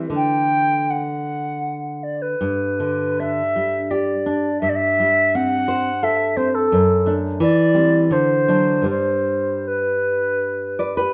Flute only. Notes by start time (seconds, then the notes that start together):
0.16 G5
0.90 F#5
2.03 D5
2.22 B4
3.20 E5
3.91 D5
4.61 E5
4.69 D5
4.75 E5
5.35 F#5
6.04 E5
6.37 C5
6.55 A4
7.42 D5
8.12 C5
8.90 C5
9.68 B4